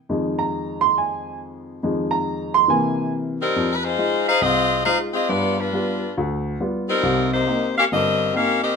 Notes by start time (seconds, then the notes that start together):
0.09 F2 D#3 G#3
0.39 A#5
0.81 C6
0.98 G#5
1.83 F2 D#3 G#3
2.11 A#5
2.54 C6
2.68 C3 E3 A#3 G#5
3.40 G3 C4 D#4 A#4
3.56 F2
3.75 B4
3.84 G#3 D#4 F4 C5
3.98 G#3 D#4 F4
4.28 D#4 G#4 C5 F5
4.41 C2 C4 F4 G#4 D#5
4.85 G#3 D#4 F4 G#4 C5 F5
5.13 C4 F4 G#4 D#5
5.29 G2 B3 F4 G4 D5
5.58 G3 D4 F4 B4
5.73 G3 B3 F4
6.17 D2
6.60 G3 B3 F4
6.89 G3 C4 D#4 A#4
7.03 C2 C3
7.33 A#3 D#4 G4 C5
7.47 A#3 C4 D#4
7.77 C#4 G4 A#4 F5
7.92 G1 G2 C4 G4 A#4 D#5
8.33 A#3 C4 C#4 D#4 G4 A#4 F5
8.63 C4 G4 A#4 D#5